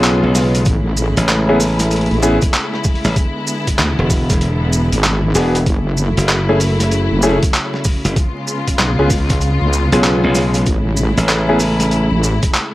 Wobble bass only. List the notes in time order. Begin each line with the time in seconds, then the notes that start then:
0.66 A1
2.11 A1
3.78 D2
4.92 G#1
5.66 F#1
7.11 F#1
8.79 B1
8.99 C#2
9.61 C#2
10.67 A1
12.11 A1